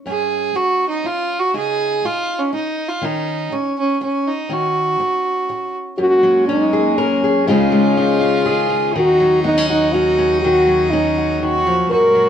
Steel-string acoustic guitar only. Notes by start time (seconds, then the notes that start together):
0.06 F#2 C#4
0.55 muted steel-string acoustic guitar stroke
1.04 muted steel-string acoustic guitar stroke
1.54 C#3 D#4
2.05 muted steel-string acoustic guitar stroke
2.52 muted steel-string acoustic guitar stroke
3.01 D#3 C#4
3.52 muted steel-string acoustic guitar stroke
4.01 muted steel-string acoustic guitar stroke
4.49 D#3 C#4
5.00 muted steel-string acoustic guitar stroke
5.49 muted steel-string acoustic guitar stroke
5.98 F#2
6.23 F#3
6.49 C#4
6.73 G#4
6.98 A#4
7.24 G#4
7.47 C#3 G#3 D#4 F4 G#4
7.72 G#3
7.97 D#4
8.21 F4
8.46 G#4
8.70 F4
8.95 D#3
9.20 F#3
9.44 B3
9.58 C#4
9.70 F#4
9.94 C#4
10.18 C#4
10.44 D#3
10.67 F#3
10.93 C#4
11.18 F#4
11.43 D#3
11.67 F3
11.91 F#2
12.15 F#3